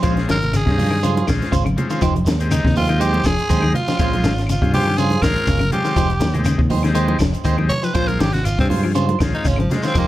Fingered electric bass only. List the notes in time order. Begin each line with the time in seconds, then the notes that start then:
0.04 A#1
0.30 G#1
0.67 G2
1.29 A#1
1.53 G#1
2.03 F1
2.27 D#2
2.65 D#2
3.26 F1
3.50 D#2
4.00 A#1
4.24 G#1
4.62 G2
5.23 A#1
5.48 G1
5.97 F1
6.21 D#2
6.59 D#2
7.21 F1
7.46 D#2
7.95 A#1
8.22 G#1
8.59 G2
9.21 A#1
9.46 G#1
9.95 F1